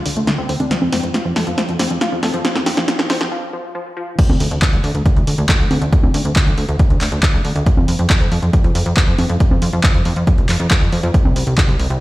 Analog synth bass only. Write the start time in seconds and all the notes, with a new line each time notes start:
0.06 D2
0.17 D2
0.38 D2
0.49 D2
0.60 D2
0.82 F2
0.93 F2
1.03 F2
1.25 F2
1.36 F2
1.47 F2
1.69 F2
1.80 F2
1.91 F2
2.12 F2
2.23 F2
2.34 F2
2.56 F2
2.67 F2
2.77 F2
2.99 F2
3.10 F2
3.21 F2
4.29 D2
4.40 D2
4.51 D2
4.73 D2
4.84 D2
4.95 D2
5.16 D2
5.27 D2
5.38 D2
5.60 D2
5.71 D2
5.82 D2
6.03 D2
6.14 D2
6.25 D2
6.47 D2
6.58 D2
6.69 D2
6.90 D2
7.01 D2
7.12 D2
7.34 D2
7.45 D2
7.56 D2
7.77 F2
7.88 F2
7.99 F2
8.21 F2
8.32 F2
8.42 F2
8.64 F2
8.75 F2
8.86 F2
9.08 F2
9.19 F2
9.29 F2
9.51 F2
9.62 F2
9.73 F2
9.95 F2
10.06 F2
10.16 F2
10.38 F1
10.49 F2
10.60 F2
10.82 F2
10.92 F2
11.03 F2
11.25 C2
11.36 C2
11.47 C2
11.69 C2
11.79 C2
11.90 C2